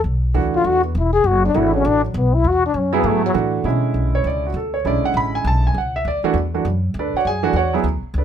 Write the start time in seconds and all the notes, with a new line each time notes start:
0.04 B1
0.34 D2 E3 A3 D4 F#4
0.55 F4
0.64 E2 F#4
0.85 B3
0.95 E1 E4
1.13 G#4
1.24 F#1 F#4
1.45 D4
1.54 G#1 E3 A3 D4 E4 F#4
1.75 C#4
1.85 A1 D4
2.04 F#3
2.14 B1 B3
2.34 E4
2.44 E2 F#4
2.66 D4
2.74 F#2 C#4
2.93 F#3 B3 E4 G#4
3.04 G#2 A3
3.26 F#3
3.34 A2 E3 A3 D4 F#4
3.64 B2 D3 G#3 C#4 E4
3.94 B1
4.15 C#5
4.24 C#2 D5
4.46 F#4
4.54 D2 A4
4.74 C#5
4.85 B1 D3 G#3 C#4 E4 D5
5.04 F#5, muted upright bass stroke
5.14 A1 B5
5.35 G#5
5.44 B1 A5
5.67 G#5
5.74 C#2 F#5
5.96 E5
6.05 D2 D5
6.23 E3 A3 D4 F#4, muted upright bass stroke
6.34 E2
6.54 E3 A3 D4 F#4
6.65 F#2
6.94 D2
6.99 D4 A4 B4 D5
7.13 F#4 C#5 D5 F#5, muted upright bass stroke
7.25 F#2 G#4 G#5
7.43 E3 A3 D4 F#4
7.53 E2 F#4 C#5 D5 F#5
7.73 F#3 B3 E4 G#4
7.84 D2
8.03 muted upright bass stroke
8.14 C#2
8.18 D4 A4 B4 D5